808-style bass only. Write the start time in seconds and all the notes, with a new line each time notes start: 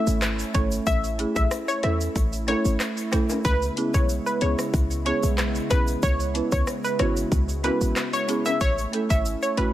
0.07 G#1
0.55 G#1
0.87 A1
1.36 A1
1.84 E2
2.16 A1
2.65 G#1
3.45 C#2
3.94 B1
4.42 C#2
4.74 C#2
5.23 B1
5.71 B1
6.03 C#2
6.52 C#2
7.00 G#1
7.32 C#2
7.81 A1
8.61 A1
9.10 G#1
9.58 A1